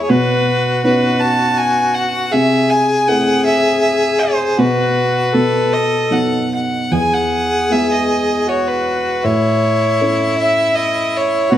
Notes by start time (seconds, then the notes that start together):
Already playing: G#3 B3 E4
0.03 G#4 C#5
0.09 B2 F#4 B4
0.84 B3 C#4 D#4 B4
1.20 A5
1.57 G#5
1.94 F#5
2.31 C3 G#4 E5
2.70 G#5
3.08 A3 C4 E4 F#5
3.45 E5
3.82 E5
4.19 C5
4.58 B2 F#4 B4
5.34 B2 A4
5.73 D#5
6.10 F#3 B3 D#4 F#5
6.55 F#5
6.91 E2 G#4 G#5
7.13 F#5
7.70 G#3 B3 E4 E5
7.91 D#5
8.48 F#4 C#5
8.67 B4
9.24 A2 E4 C#5
10.01 A3 C#4 E4
10.38 E5
10.75 D#5
11.17 C#5
11.50 B2 F#4 B4